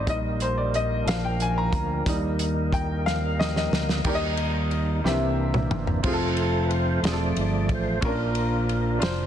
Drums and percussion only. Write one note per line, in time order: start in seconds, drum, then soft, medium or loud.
0.07 kick loud
0.07 closed hi-hat medium
0.40 closed hi-hat medium
0.74 closed hi-hat soft
1.08 snare loud
1.08 closed hi-hat medium
1.40 closed hi-hat medium
1.73 kick medium
1.73 closed hi-hat medium
2.06 kick loud
2.06 closed hi-hat medium
2.39 closed hi-hat medium
2.73 kick medium
2.73 closed hi-hat soft
3.07 snare medium
3.41 snare medium
3.56 snare medium
3.73 snare medium
3.89 snare medium
4.04 kick loud
4.04 crash loud
4.37 ride medium
4.71 ride soft
5.06 snare medium
5.54 mid tom medium
5.71 mid tom loud
5.87 floor tom medium
6.04 kick loud
6.04 crash loud
6.37 ride medium
6.71 ride soft
7.04 snare loud
7.04 ride medium
7.36 ride soft
7.69 kick loud
7.69 ride soft
8.02 kick loud
8.02 ride medium
8.35 ride medium
8.69 ride soft
9.02 snare loud
9.02 ride medium